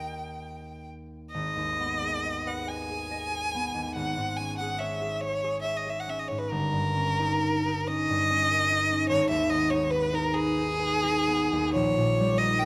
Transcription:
Already playing: D#2 A#4 D#5 G5
1.31 G#1 D#5
1.56 D#2
1.79 B3
2.03 G#4
2.25 D#5
2.46 B4 F#5
2.68 D#5 G#5
2.89 G#4
3.11 D#5
3.32 G#4
3.54 B3
3.75 D#2
3.95 G#1 F#5
4.17 G#2
4.37 C#4 G#5
4.58 G#4 F#5
4.78 C#5 E5
5.01 G#4
5.21 C#5
5.44 G#4
5.62 C#5 E5
5.77 D#5
5.87 G#4 E5
6.00 F#5
6.08 C#4 E5
6.19 D#5
6.28 G#2 C#5
6.39 B4
6.51 G1 A#4
6.73 G2
6.96 C#4
7.20 D#4
7.43 A#4
7.66 D#4
7.88 C#4 D#5
8.10 G2
8.31 C#4
8.51 A#4
8.71 D#4
8.91 C#4
9.09 G#1 C#5
9.30 D#2 E5
9.50 B3 D#5
9.70 D#4 C#5
9.90 B4
10.13 D#4 A#4
10.34 G#4 B4
10.57 D#4
10.79 B4
11.04 D#4
11.27 B3
11.53 D#2
11.74 A#1 C#5
11.97 A#2
12.20 G3
12.38 D#4 D#5
12.59 A#4 G5

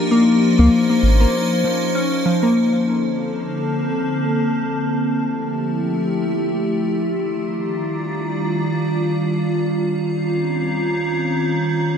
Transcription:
Already playing: F3 D#4
0.11 A#3 C#4 C5
0.59 C#2 A#3
0.90 A#3
1.03 G#1
1.20 A#3
1.64 F3
1.95 C#4
2.26 F3
2.43 A#3
2.56 D3 A#3 C4 A4
5.01 F3 A3 E4 G4
7.15 D#3 G3 D4 F4
9.91 D#3 C4 C#4

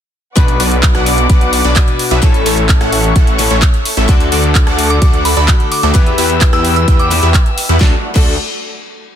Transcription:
0.35 B1 B2 B3 D4 F#4 B4 D5 F#5 D6, kick, closed hi-hat
0.48 closed hi-hat
0.60 B1 B3 D4 F#4 B4 D5, open hi-hat
0.72 closed hi-hat
0.83 kick, clap, closed hi-hat
0.95 B1 B3 D4 F#4 B4 F#5, cross-stick, closed hi-hat
1.06 open hi-hat
1.18 closed hi-hat
1.30 B3 D4 F#4 B4 F#5, kick, closed hi-hat
1.41 closed hi-hat
1.53 open hi-hat
1.65 B1 B3 D4 F#4 B4 D5, closed hi-hat
1.76 B2 B3 D4 F#4 B4, kick, clap, closed hi-hat
1.88 closed hi-hat
1.99 open hi-hat
2.11 B1 B3 D4 F#4 B4 E5, closed hi-hat
2.22 A2 A3 C#4 E4 A4 C#5 E5 C#6, kick, closed hi-hat
2.34 closed hi-hat
2.46 A1 A3 C#4 E4 A4 C#5, open hi-hat
2.58 closed hi-hat
2.69 kick, clap, closed hi-hat
2.81 A1 A3 C#4 E4 A4 F#5, cross-stick, closed hi-hat
2.92 open hi-hat
3.04 closed hi-hat
3.16 A3 C#4 E4 A4 F#5, kick, closed hi-hat
3.27 closed hi-hat
3.38 A2 A3 C#4 E4 A4, open hi-hat
3.51 A1 A3 C#4 E4 A4 C#5, closed hi-hat
3.62 kick, clap, closed hi-hat
3.74 closed hi-hat
3.85 open hi-hat
3.97 A1 A3 C#4 E4 A4 E5, closed hi-hat
4.08 D3 A3 D4 F#4 A4 D5 F#5 D6, kick, closed hi-hat
4.20 closed hi-hat
4.32 D2 A3 D4 F#4 A4 D5, open hi-hat
4.44 closed hi-hat
4.55 kick, clap, closed hi-hat
4.67 D2 A3 D4 F#4 A4 F#5, cross-stick, closed hi-hat
4.79 open hi-hat
4.90 D6, closed hi-hat
5.02 A3 D4 F#4 A4 F#5, kick, closed hi-hat
5.14 closed hi-hat
5.25 B5, open hi-hat
5.37 D2 A3 D4 F#4 A4 D5 B5, closed hi-hat
5.48 D3 A3 D4 F#4 A4, kick, clap, closed hi-hat
5.60 closed hi-hat
5.72 D6, open hi-hat
5.83 D2 A3 D4 F#4 A4 E5 D6, closed hi-hat
5.94 E3 B3 E4 G4 B4 E5 G5 E6, kick, closed hi-hat
6.06 closed hi-hat
6.18 E2 B3 E4 G4 B4 E5, open hi-hat
6.30 closed hi-hat
6.41 kick, clap, closed hi-hat
6.53 E2 B3 E4 G4 B4 G5 E6, cross-stick, closed hi-hat
6.65 open hi-hat
6.76 E6, closed hi-hat
6.88 E2 B3 E4 G4 B4 G5, kick, closed hi-hat
6.99 D6, closed hi-hat
7.10 E3 B3 E4 G4 B4, open hi-hat
7.23 E2 B3 E4 G4 B4 E5, closed hi-hat
7.34 kick, clap, closed hi-hat
7.46 closed hi-hat
7.58 open hi-hat
7.69 E2 B3 E4 G4 B4 F#5, closed hi-hat
7.79 D2 A3 D4 F#4 A4 D5 F#5, kick, snare
8.14 D2 A3 D4 F#4 A4 D5, kick, crash

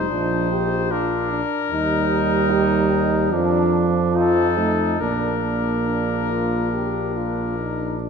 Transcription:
Already playing: D#4 C5
0.10 A#1 F3 D4
0.51 G4
0.91 D4 F4 A#4
1.33 D4
1.71 D#2 G3 D#4
2.51 G4
2.92 D#4
3.32 F2 F3 D4
4.15 D#4 F4 A4
4.57 A3 D#4
5.00 A#1 A#3 D4 A#4
5.86 D4
6.30 F4
6.72 G4
7.16 F4
7.59 D#4
8.01 D4

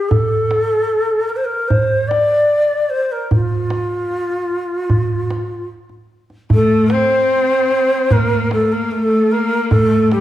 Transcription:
Already playing: G4
0.09 A4, tombak dum
0.51 tombak tek
1.29 A#4, tombak ka
1.36 C5
1.44 A#4
1.68 C5, tombak dum
2.08 D5, tombak tek
2.90 C5
3.11 A#4
3.31 F4, tombak dum
3.70 tombak tek
4.11 tombak ka
4.30 tombak ka
4.50 tombak ka
4.89 tombak dum
5.30 tombak tek
5.89 tombak ka
6.30 tombak ka
6.50 A3 A4, tombak dum
6.90 C4 C5, tombak tek
7.70 tombak ka
8.10 A#3 A#4, tombak dum
8.50 A3 A4, tombak tek
8.72 A#3 A#4
8.91 A3 A#4, tombak ka
9.02 A4
9.31 A#3 A#4
9.70 A3 A4, tombak dum
10.12 G3 G4, tombak tek

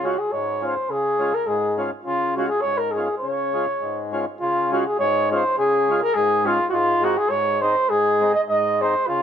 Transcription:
Already playing: C#3
0.03 G#3 C#4 F4 F#4
0.19 G#4
0.32 G#2 C#5
0.61 G#3 C#4 F4
0.65 C5
0.89 C#3 G#4
1.19 G#3 C#4 F4
1.34 A#4
1.47 G#2 G#4
1.77 G#3 C#4 F4
2.06 C#3 F4
2.37 G#3 C#4 F4 F#4
2.48 G#4
2.61 G#2 C#5
2.78 A#4
2.92 G#3 G#4
2.96 C#4 F4
3.18 C#5
3.22 C#3
3.53 G#3 C#4 F4
3.81 G#2
4.12 G#3 C#4 F4
4.40 C#3 F4
4.71 G#3 C#4 F4 F#4
4.86 G#4
4.99 G#2 C#5
5.30 G#3 C#4 F4 C5
5.58 C#3 G#4
5.88 G#3 C#4 F4
6.02 A#4
6.14 G#2 G#4
6.45 G#3 C#4 F4
6.69 G#2 F4 F#4
7.02 G#3 C4 D#4 F#4
7.18 G#4
7.30 G#2 C#5
7.61 G#3 C4 D#4 C5
7.89 G#2 G#4
8.20 G#3 C4 D#4
8.35 D#5
8.49 G#2 D#5
8.81 G#3 C4 D#4 C5
9.07 C#3 F4

